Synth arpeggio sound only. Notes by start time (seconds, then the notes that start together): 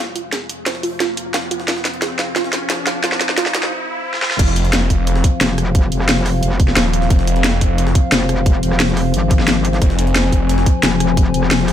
0.00 F5
0.16 F4
0.32 G#4
0.66 C5
0.83 F4
1.00 F4
1.34 F5
1.51 F4
1.68 F4
2.02 G#4
2.19 F5
2.36 F4
2.70 G#4
2.87 F5
3.04 F4
3.38 F4